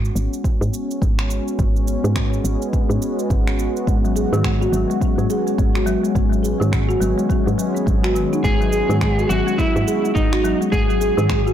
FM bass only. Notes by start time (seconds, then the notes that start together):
Already playing: G#2
0.15 G#1
0.61 G#2
1.02 G#1
1.59 G#1
2.04 G#2
2.44 G#1
2.89 G#2
3.30 G#1
3.87 G#1
4.33 G#2
4.73 G#1
5.18 G#2
5.59 G#1
6.15 G#1
6.61 G#2
7.01 G#1
7.47 G#2
7.87 G#1
8.44 G#1
8.89 G#2
9.30 G#1
9.76 G#2
10.16 G#1
10.73 G#1
11.18 G#2